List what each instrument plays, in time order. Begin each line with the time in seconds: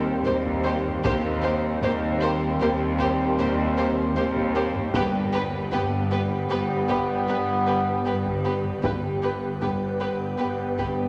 Already playing: double bass section D#2, cello section D#2, synth drone D#2, french horn section G3 C4, ambient pad A#4 C5 G5
0.26 double bass section D#2, cello section D#2, viola section A#3, violin section G4 C5
0.46 taiko
0.64 viola section A#3, violin section G4 C5
0.85 taiko low-mid
1.04 synth drone D#2, double bass section D#2, cello section D#2, french horn section G3 C4, viola section A#3, violin section G4 C5, ambient pad A#4 C5 G5, taiko
1.43 viola section A#3, violin section G4 C5
1.82 double bass section D#2, cello section D#2, viola section A#3, violin section G4 C5, taiko
2.22 viola section A#3, violin section G4 C5
2.60 double bass section D#2, cello section D#2, viola section A#3, violin section G4 C5
2.99 viola section A#3, violin section G4 C5, taiko
3.38 double bass section D#2, cello section D#2, viola section A#3, violin section G4 C5
3.77 viola section A#3, violin section G4 C5
4.16 double bass section D#2, cello section D#2, viola section A#3, violin section G4 C5
4.36 taiko
4.55 viola section A#3, violin section G4 C5
4.75 taiko low-mid
4.94 synth drone G1, double bass section G1, cello section G2, french horn section G3 B3, viola section B3, violin section G4 B4, ambient pad G4 B4 G5, taiko
5.33 viola section B3, violin section G4 B4
5.72 double bass section G1, cello section G2, viola section B3, violin section G4 B4, taiko
6.11 viola section B3, violin section G4 B4
6.49 double bass section G1, cello section G2, viola section B3, violin section G4 B4
6.89 viola section B3, violin section G4 B4, taiko
7.27 double bass section G1, cello section G2, viola section B3, violin section G4 B4
7.66 viola section B3, violin section G4 B4
8.05 double bass section G1, cello section G2, viola section B3, violin section G4 B4
8.26 taiko
8.44 viola section B3, violin section G4 B4
8.64 taiko low-mid
8.83 double bass section G1, synth drone G1, cello section G2, french horn section G3 B3, viola section B3, violin section G4 B4, ambient pad G4 B4 G5, taiko
9.21 viola section B3, violin section G4 B4
9.61 double bass section G1, cello section G2, viola section B3, violin section G4 B4, taiko
10.00 viola section B3, violin section G4 B4
10.38 double bass section G1, cello section G2, viola section B3, violin section G4 B4
10.78 viola section B3, violin section G4 B4, taiko